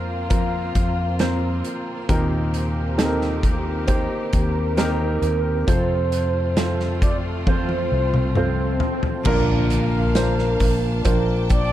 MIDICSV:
0, 0, Header, 1, 9, 480
1, 0, Start_track
1, 0, Key_signature, -2, "major"
1, 0, Tempo, 895522
1, 1126, Time_signature, 4, 2, 24, 8
1, 6285, End_track
2, 0, Start_track
2, 0, Title_t, "Soft synth lead"
2, 0, Program_c, 0, 80
2, 0, Note_on_c, 0, 77, 98
2, 169, Note_off_c, 0, 77, 0
2, 173, Note_on_c, 0, 77, 92
2, 868, Note_off_c, 0, 77, 0
2, 1841, Note_on_c, 0, 70, 99
2, 3054, Note_on_c, 0, 72, 102
2, 3062, Note_off_c, 0, 70, 0
2, 3764, Note_off_c, 0, 72, 0
2, 3768, Note_on_c, 0, 74, 100
2, 3843, Note_off_c, 0, 74, 0
2, 4009, Note_on_c, 0, 72, 97
2, 4706, Note_off_c, 0, 72, 0
2, 5206, Note_on_c, 0, 70, 101
2, 5904, Note_off_c, 0, 70, 0
2, 5930, Note_on_c, 0, 70, 85
2, 6151, Note_off_c, 0, 70, 0
2, 6176, Note_on_c, 0, 74, 109
2, 6285, Note_off_c, 0, 74, 0
2, 6285, End_track
3, 0, Start_track
3, 0, Title_t, "Grand piano"
3, 0, Program_c, 1, 0
3, 0, Control_c, 1, 64, 127
3, 0, Note_on_c, 1, 53, 52
3, 0, Note_on_c, 1, 58, 61
3, 0, Note_on_c, 1, 60, 55
3, 0, Note_on_c, 1, 65, 58
3, 0, Note_on_c, 1, 70, 65
3, 0, Note_on_c, 1, 72, 67
3, 139, Note_off_c, 1, 58, 0
3, 140, Note_off_c, 1, 60, 0
3, 140, Note_off_c, 1, 65, 0
3, 140, Note_off_c, 1, 72, 0
3, 156, Note_on_c, 1, 58, 60
3, 157, Note_on_c, 1, 65, 54
3, 160, Note_off_c, 1, 70, 0
3, 160, Note_on_c, 1, 70, 63
3, 161, Note_on_c, 1, 60, 57
3, 617, Note_off_c, 1, 58, 0
3, 617, Note_off_c, 1, 65, 0
3, 619, Note_off_c, 1, 60, 0
3, 619, Note_off_c, 1, 70, 0
3, 641, Note_on_c, 1, 58, 68
3, 642, Note_on_c, 1, 60, 68
3, 643, Note_on_c, 1, 65, 59
3, 644, Note_on_c, 1, 72, 76
3, 1099, Note_off_c, 1, 58, 0
3, 1100, Note_off_c, 1, 60, 0
3, 1100, Note_off_c, 1, 65, 0
3, 1101, Note_off_c, 1, 72, 0
3, 1119, Note_on_c, 1, 60, 74
3, 1122, Note_on_c, 1, 63, 68
3, 1122, Note_on_c, 1, 67, 65
3, 1122, Note_on_c, 1, 70, 77
3, 1124, Note_on_c, 1, 46, 62
3, 1132, Control_c, 1, 64, 0
3, 1134, Note_off_c, 1, 53, 0
3, 1241, Control_c, 1, 64, 127
3, 1578, Note_off_c, 1, 60, 0
3, 1580, Note_off_c, 1, 63, 0
3, 1580, Note_off_c, 1, 67, 0
3, 1580, Note_off_c, 1, 70, 0
3, 1597, Note_on_c, 1, 60, 73
3, 1597, Note_on_c, 1, 67, 69
3, 1599, Note_on_c, 1, 63, 69
3, 1601, Note_on_c, 1, 69, 65
3, 1636, Note_on_c, 1, 70, 78
3, 1638, Note_off_c, 1, 69, 0
3, 1823, Note_off_c, 1, 46, 0
3, 2057, Note_off_c, 1, 60, 0
3, 2057, Note_off_c, 1, 67, 0
3, 2058, Note_off_c, 1, 63, 0
3, 2075, Note_on_c, 1, 60, 58
3, 2077, Note_off_c, 1, 70, 0
3, 2077, Note_on_c, 1, 63, 58
3, 2079, Note_on_c, 1, 67, 56
3, 2079, Note_on_c, 1, 72, 70
3, 2536, Note_off_c, 1, 60, 0
3, 2537, Note_off_c, 1, 63, 0
3, 2538, Note_off_c, 1, 67, 0
3, 2538, Note_off_c, 1, 72, 0
3, 2559, Note_on_c, 1, 60, 83
3, 2561, Note_on_c, 1, 63, 78
3, 2562, Note_on_c, 1, 67, 80
3, 2563, Note_on_c, 1, 70, 95
3, 3018, Note_off_c, 1, 60, 0
3, 3019, Note_off_c, 1, 63, 0
3, 3020, Note_off_c, 1, 67, 0
3, 3020, Note_off_c, 1, 70, 0
3, 3041, Note_on_c, 1, 60, 64
3, 3044, Note_on_c, 1, 48, 58
3, 3045, Note_on_c, 1, 65, 60
3, 3045, Note_on_c, 1, 69, 62
3, 3045, Note_on_c, 1, 72, 70
3, 3052, Control_c, 1, 64, 0
3, 3161, Control_c, 1, 64, 127
3, 3499, Note_off_c, 1, 60, 0
3, 3501, Note_off_c, 1, 65, 0
3, 3501, Note_off_c, 1, 69, 0
3, 3502, Note_off_c, 1, 72, 0
3, 3523, Note_on_c, 1, 60, 62
3, 3523, Note_on_c, 1, 69, 61
3, 3524, Note_on_c, 1, 65, 60
3, 3524, Note_on_c, 1, 72, 65
3, 3743, Note_off_c, 1, 48, 0
3, 3980, Note_off_c, 1, 60, 0
3, 3980, Note_off_c, 1, 69, 0
3, 3981, Note_off_c, 1, 65, 0
3, 3981, Note_off_c, 1, 72, 0
3, 4005, Note_on_c, 1, 60, 68
3, 4006, Note_on_c, 1, 65, 57
3, 4007, Note_on_c, 1, 69, 55
3, 4009, Note_on_c, 1, 72, 70
3, 4461, Note_off_c, 1, 60, 0
3, 4462, Note_off_c, 1, 65, 0
3, 4462, Note_off_c, 1, 69, 0
3, 4463, Note_off_c, 1, 72, 0
3, 4485, Note_on_c, 1, 60, 76
3, 4485, Note_on_c, 1, 69, 67
3, 4487, Note_on_c, 1, 65, 70
3, 4488, Note_on_c, 1, 72, 74
3, 4941, Note_off_c, 1, 60, 0
3, 4941, Note_off_c, 1, 69, 0
3, 4942, Note_off_c, 1, 65, 0
3, 4943, Note_off_c, 1, 72, 0
3, 4965, Note_on_c, 1, 58, 97
3, 4966, Note_on_c, 1, 62, 91
3, 4968, Note_on_c, 1, 65, 89
3, 4968, Note_on_c, 1, 70, 118
3, 4969, Note_on_c, 1, 46, 64
3, 4969, Note_on_c, 1, 53, 64
3, 4972, Control_c, 1, 64, 0
3, 5063, Control_c, 1, 64, 127
3, 5421, Note_off_c, 1, 58, 0
3, 5422, Note_off_c, 1, 62, 0
3, 5423, Note_off_c, 1, 65, 0
3, 5423, Note_off_c, 1, 70, 0
3, 5442, Note_on_c, 1, 58, 68
3, 5444, Note_on_c, 1, 62, 61
3, 5445, Note_on_c, 1, 65, 59
3, 5446, Note_on_c, 1, 70, 57
3, 5448, Note_on_c, 1, 72, 74
3, 5666, Note_off_c, 1, 46, 0
3, 5666, Note_off_c, 1, 53, 0
3, 5900, Note_off_c, 1, 58, 0
3, 5901, Note_off_c, 1, 62, 0
3, 5901, Note_off_c, 1, 65, 0
3, 5902, Note_off_c, 1, 70, 0
3, 5903, Note_off_c, 1, 72, 0
3, 5921, Note_on_c, 1, 58, 63
3, 5921, Note_on_c, 1, 62, 52
3, 5922, Note_on_c, 1, 65, 60
3, 5923, Note_on_c, 1, 72, 62
3, 5925, Note_on_c, 1, 70, 60
3, 6285, Note_off_c, 1, 58, 0
3, 6285, Note_off_c, 1, 62, 0
3, 6285, Note_off_c, 1, 65, 0
3, 6285, Note_off_c, 1, 70, 0
3, 6285, Note_off_c, 1, 72, 0
3, 6285, End_track
4, 0, Start_track
4, 0, Title_t, "Steel-string acoustic guitar"
4, 0, Program_c, 2, 25
4, 0, Note_on_c, 2, 58, 33
4, 0, Note_on_c, 2, 70, 39
4, 0, Note_on_c, 2, 72, 42
4, 159, Note_on_c, 2, 53, 61
4, 160, Note_off_c, 2, 58, 0
4, 162, Note_off_c, 2, 72, 0
4, 166, Note_on_c, 2, 58, 62
4, 167, Note_off_c, 2, 70, 0
4, 174, Note_on_c, 2, 70, 57
4, 177, Note_on_c, 2, 72, 62
4, 634, Note_off_c, 2, 53, 0
4, 640, Note_on_c, 2, 53, 49
4, 644, Note_off_c, 2, 58, 0
4, 647, Note_on_c, 2, 58, 51
4, 650, Note_off_c, 2, 70, 0
4, 652, Note_on_c, 2, 70, 62
4, 653, Note_off_c, 2, 72, 0
4, 655, Note_on_c, 2, 72, 64
4, 1122, Note_on_c, 2, 51, 74
4, 1123, Note_off_c, 2, 53, 0
4, 1124, Note_off_c, 2, 58, 0
4, 1124, Note_on_c, 2, 48, 76
4, 1127, Note_on_c, 2, 58, 80
4, 1127, Note_on_c, 2, 63, 82
4, 1129, Note_off_c, 2, 70, 0
4, 1129, Note_off_c, 2, 72, 0
4, 1131, Note_on_c, 2, 70, 77
4, 1132, Note_on_c, 2, 67, 82
4, 1830, Note_off_c, 2, 67, 0
4, 1836, Note_off_c, 2, 70, 0
4, 1836, Note_on_c, 2, 67, 42
4, 1840, Note_off_c, 2, 63, 0
4, 1843, Note_on_c, 2, 70, 45
4, 1844, Note_off_c, 2, 51, 0
4, 1845, Note_off_c, 2, 48, 0
4, 1846, Note_off_c, 2, 58, 0
4, 1846, Note_on_c, 2, 63, 42
4, 1853, Note_on_c, 2, 58, 36
4, 2069, Note_off_c, 2, 58, 0
4, 2075, Note_off_c, 2, 63, 0
4, 2076, Note_on_c, 2, 58, 55
4, 2080, Note_off_c, 2, 70, 0
4, 2081, Note_off_c, 2, 67, 0
4, 2081, Note_on_c, 2, 63, 60
4, 2086, Note_on_c, 2, 70, 66
4, 2092, Note_on_c, 2, 67, 66
4, 2547, Note_off_c, 2, 58, 0
4, 2554, Note_off_c, 2, 63, 0
4, 2554, Note_on_c, 2, 58, 55
4, 2558, Note_off_c, 2, 70, 0
4, 2560, Note_on_c, 2, 63, 56
4, 2563, Note_off_c, 2, 67, 0
4, 2564, Note_on_c, 2, 70, 68
4, 2570, Note_on_c, 2, 67, 74
4, 3036, Note_off_c, 2, 58, 0
4, 3038, Note_on_c, 2, 53, 69
4, 3040, Note_off_c, 2, 63, 0
4, 3042, Note_on_c, 2, 65, 73
4, 3045, Note_off_c, 2, 70, 0
4, 3047, Note_on_c, 2, 69, 72
4, 3048, Note_off_c, 2, 67, 0
4, 3050, Note_on_c, 2, 72, 73
4, 3749, Note_off_c, 2, 72, 0
4, 3756, Note_on_c, 2, 72, 49
4, 3763, Note_off_c, 2, 69, 0
4, 3765, Note_on_c, 2, 69, 41
4, 3768, Note_off_c, 2, 65, 0
4, 3770, Note_on_c, 2, 65, 41
4, 3995, Note_off_c, 2, 53, 0
4, 3997, Note_off_c, 2, 65, 0
4, 3997, Note_on_c, 2, 53, 55
4, 4001, Note_off_c, 2, 69, 0
4, 4001, Note_off_c, 2, 72, 0
4, 4003, Note_on_c, 2, 65, 68
4, 4008, Note_on_c, 2, 69, 62
4, 4014, Note_on_c, 2, 72, 69
4, 4476, Note_off_c, 2, 53, 0
4, 4478, Note_on_c, 2, 53, 54
4, 4482, Note_off_c, 2, 65, 0
4, 4484, Note_on_c, 2, 65, 62
4, 4486, Note_off_c, 2, 69, 0
4, 4486, Note_off_c, 2, 72, 0
4, 4488, Note_on_c, 2, 69, 52
4, 4492, Note_on_c, 2, 72, 60
4, 4949, Note_on_c, 2, 46, 79
4, 4953, Note_on_c, 2, 50, 87
4, 4957, Note_off_c, 2, 53, 0
4, 4959, Note_on_c, 2, 53, 81
4, 4963, Note_off_c, 2, 65, 0
4, 4965, Note_on_c, 2, 58, 73
4, 4968, Note_off_c, 2, 69, 0
4, 4969, Note_off_c, 2, 72, 0
4, 4970, Note_on_c, 2, 62, 84
4, 5917, Note_off_c, 2, 46, 0
4, 5917, Note_off_c, 2, 53, 0
4, 5919, Note_on_c, 2, 53, 60
4, 5920, Note_off_c, 2, 50, 0
4, 5920, Note_off_c, 2, 58, 0
4, 5925, Note_off_c, 2, 62, 0
4, 5926, Note_on_c, 2, 58, 62
4, 5931, Note_on_c, 2, 62, 65
4, 6285, Note_off_c, 2, 53, 0
4, 6285, Note_off_c, 2, 58, 0
4, 6285, Note_off_c, 2, 62, 0
4, 6285, End_track
5, 0, Start_track
5, 0, Title_t, "String section"
5, 0, Program_c, 3, 48
5, 0, Note_on_c, 3, 58, 52
5, 0, Note_on_c, 3, 60, 55
5, 0, Note_on_c, 3, 65, 73
5, 1110, Note_off_c, 3, 65, 0
5, 1123, Note_on_c, 3, 67, 71
5, 1126, Note_on_c, 3, 51, 65
5, 3025, Note_off_c, 3, 58, 0
5, 3025, Note_off_c, 3, 60, 0
5, 3025, Note_off_c, 3, 67, 0
5, 3027, Note_off_c, 3, 51, 0
5, 3042, Note_on_c, 3, 57, 65
5, 3044, Note_on_c, 3, 60, 60
5, 3047, Note_on_c, 3, 65, 73
5, 4945, Note_off_c, 3, 57, 0
5, 4946, Note_off_c, 3, 60, 0
5, 4947, Note_off_c, 3, 65, 0
5, 4967, Note_on_c, 3, 81, 68
5, 4968, Note_on_c, 3, 62, 57
5, 4969, Note_on_c, 3, 77, 60
5, 5918, Note_off_c, 3, 77, 0
5, 5927, Note_on_c, 3, 79, 69
5, 6285, Note_off_c, 3, 62, 0
5, 6285, Note_off_c, 3, 79, 0
5, 6285, Note_off_c, 3, 81, 0
5, 6285, End_track
6, 0, Start_track
6, 0, Title_t, "Fretless electric bass"
6, 0, Program_c, 4, 35
6, 0, Note_on_c, 4, 41, 73
6, 385, Note_off_c, 4, 41, 0
6, 404, Note_on_c, 4, 41, 76
6, 863, Note_off_c, 4, 41, 0
6, 1119, Note_on_c, 4, 39, 84
6, 2181, Note_off_c, 4, 39, 0
6, 2323, Note_on_c, 4, 39, 84
6, 2783, Note_off_c, 4, 39, 0
6, 2797, Note_on_c, 4, 39, 89
6, 3024, Note_off_c, 4, 39, 0
6, 3043, Note_on_c, 4, 41, 93
6, 4223, Note_off_c, 4, 41, 0
6, 4244, Note_on_c, 4, 36, 82
6, 4703, Note_off_c, 4, 36, 0
6, 4962, Note_on_c, 4, 34, 84
6, 5663, Note_off_c, 4, 34, 0
6, 5683, Note_on_c, 4, 34, 99
6, 5907, Note_off_c, 4, 34, 0
6, 5924, Note_on_c, 4, 34, 105
6, 6285, Note_off_c, 4, 34, 0
6, 6285, End_track
7, 0, Start_track
7, 0, Title_t, "Impact"
7, 0, Program_c, 5, 103
7, 4967, Note_on_c, 5, 60, 79
7, 6285, Note_off_c, 5, 60, 0
7, 6285, End_track
8, 0, Start_track
8, 0, Title_t, "Swell"
8, 0, Program_c, 6, 103
8, 3045, Note_on_c, 6, 60, 77
8, 4965, Note_off_c, 6, 60, 0
8, 6285, End_track
9, 0, Start_track
9, 0, Title_t, "Drums"
9, 162, Note_on_c, 9, 42, 82
9, 165, Note_on_c, 9, 36, 87
9, 216, Note_off_c, 9, 42, 0
9, 218, Note_off_c, 9, 36, 0
9, 403, Note_on_c, 9, 42, 67
9, 404, Note_on_c, 9, 36, 71
9, 456, Note_off_c, 9, 42, 0
9, 458, Note_off_c, 9, 36, 0
9, 639, Note_on_c, 9, 42, 73
9, 643, Note_on_c, 9, 38, 91
9, 693, Note_off_c, 9, 42, 0
9, 697, Note_off_c, 9, 38, 0
9, 882, Note_on_c, 9, 42, 56
9, 935, Note_off_c, 9, 42, 0
9, 1120, Note_on_c, 9, 42, 80
9, 1121, Note_on_c, 9, 36, 98
9, 1174, Note_off_c, 9, 42, 0
9, 1175, Note_off_c, 9, 36, 0
9, 1361, Note_on_c, 9, 42, 63
9, 1414, Note_off_c, 9, 42, 0
9, 1601, Note_on_c, 9, 42, 86
9, 1602, Note_on_c, 9, 38, 100
9, 1654, Note_off_c, 9, 42, 0
9, 1656, Note_off_c, 9, 38, 0
9, 1722, Note_on_c, 9, 38, 33
9, 1776, Note_off_c, 9, 38, 0
9, 1840, Note_on_c, 9, 36, 76
9, 1842, Note_on_c, 9, 42, 59
9, 1894, Note_off_c, 9, 36, 0
9, 1896, Note_off_c, 9, 42, 0
9, 2078, Note_on_c, 9, 42, 83
9, 2081, Note_on_c, 9, 36, 91
9, 2131, Note_off_c, 9, 42, 0
9, 2135, Note_off_c, 9, 36, 0
9, 2319, Note_on_c, 9, 42, 63
9, 2323, Note_on_c, 9, 36, 76
9, 2373, Note_off_c, 9, 42, 0
9, 2376, Note_off_c, 9, 36, 0
9, 2559, Note_on_c, 9, 42, 77
9, 2563, Note_on_c, 9, 38, 100
9, 2613, Note_off_c, 9, 42, 0
9, 2617, Note_off_c, 9, 38, 0
9, 2801, Note_on_c, 9, 42, 55
9, 2854, Note_off_c, 9, 42, 0
9, 3043, Note_on_c, 9, 36, 101
9, 3043, Note_on_c, 9, 42, 84
9, 3097, Note_off_c, 9, 36, 0
9, 3097, Note_off_c, 9, 42, 0
9, 3281, Note_on_c, 9, 42, 66
9, 3335, Note_off_c, 9, 42, 0
9, 3520, Note_on_c, 9, 42, 91
9, 3521, Note_on_c, 9, 38, 94
9, 3573, Note_off_c, 9, 42, 0
9, 3575, Note_off_c, 9, 38, 0
9, 3644, Note_on_c, 9, 38, 31
9, 3697, Note_off_c, 9, 38, 0
9, 3762, Note_on_c, 9, 36, 83
9, 3764, Note_on_c, 9, 42, 55
9, 3816, Note_off_c, 9, 36, 0
9, 3817, Note_off_c, 9, 42, 0
9, 4003, Note_on_c, 9, 36, 86
9, 4003, Note_on_c, 9, 48, 61
9, 4056, Note_off_c, 9, 48, 0
9, 4057, Note_off_c, 9, 36, 0
9, 4121, Note_on_c, 9, 48, 50
9, 4175, Note_off_c, 9, 48, 0
9, 4361, Note_on_c, 9, 47, 58
9, 4415, Note_off_c, 9, 47, 0
9, 4478, Note_on_c, 9, 45, 76
9, 4531, Note_off_c, 9, 45, 0
9, 4717, Note_on_c, 9, 43, 77
9, 4771, Note_off_c, 9, 43, 0
9, 4839, Note_on_c, 9, 43, 82
9, 4893, Note_off_c, 9, 43, 0
9, 4957, Note_on_c, 9, 49, 98
9, 4962, Note_on_c, 9, 36, 100
9, 5010, Note_off_c, 9, 49, 0
9, 5016, Note_off_c, 9, 36, 0
9, 5200, Note_on_c, 9, 46, 72
9, 5201, Note_on_c, 9, 44, 56
9, 5254, Note_off_c, 9, 46, 0
9, 5255, Note_off_c, 9, 44, 0
9, 5441, Note_on_c, 9, 46, 95
9, 5442, Note_on_c, 9, 38, 101
9, 5442, Note_on_c, 9, 44, 63
9, 5447, Note_on_c, 9, 54, 76
9, 5495, Note_off_c, 9, 44, 0
9, 5495, Note_off_c, 9, 46, 0
9, 5496, Note_off_c, 9, 38, 0
9, 5501, Note_off_c, 9, 54, 0
9, 5567, Note_on_c, 9, 38, 31
9, 5620, Note_off_c, 9, 38, 0
9, 5680, Note_on_c, 9, 44, 58
9, 5682, Note_on_c, 9, 46, 62
9, 5684, Note_on_c, 9, 36, 81
9, 5734, Note_off_c, 9, 44, 0
9, 5735, Note_off_c, 9, 46, 0
9, 5737, Note_off_c, 9, 36, 0
9, 5921, Note_on_c, 9, 46, 99
9, 5924, Note_on_c, 9, 44, 71
9, 5925, Note_on_c, 9, 36, 95
9, 5975, Note_off_c, 9, 46, 0
9, 5977, Note_off_c, 9, 44, 0
9, 5979, Note_off_c, 9, 36, 0
9, 6162, Note_on_c, 9, 46, 69
9, 6164, Note_on_c, 9, 44, 58
9, 6166, Note_on_c, 9, 36, 87
9, 6215, Note_off_c, 9, 46, 0
9, 6217, Note_off_c, 9, 44, 0
9, 6220, Note_off_c, 9, 36, 0
9, 6285, End_track
0, 0, End_of_file